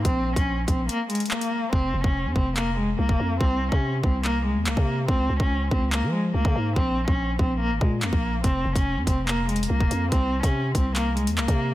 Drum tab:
HH |x-----------------x-----------------x-----------x-----------x--x--x--x--------x-----------------|------------------------------------------------------------------------------------------------|------------------------------------------------------------------------------------------------|------------------------------------------------------------------------------------------------|
CP |------------------------------------------------------------------------x-----------------------|------------------------------------------------x-----------------------------------------------|------------------------------------------------x-----------------------x-----------------------|------------------------------------------------x-----------------------------------------------|
BD |o-----------------o-----------------o-----------------------------------------------------------|o-----------------o-----------------o-----------------------------------------o-----------------|o-----------------o-----------------o-----------------------------------------o-----------------|o-----------------o-----------------o-----------------------------------------o-----------------|

HH |------------------------------------------------------------------------------------------------|x-----------------x-----------------x-----------------------x---x---x---------------x-----------|x-----------------x-----------------x-----------x-----------x-----x-----------x-----------------|
CP |------------------------------------------------------------------------x-----------------------|------------------------------------------------x-----------------------------------------------|------------------------------------------------x-----------------------x-----------------------|
BD |o-----------------o-----------------o-----------------------o-----------------o-----------------|o-----------------o-----------------o-----------------------------------------o-----------------|o-----------------o-----------------o-----------------------------------------o-----------------|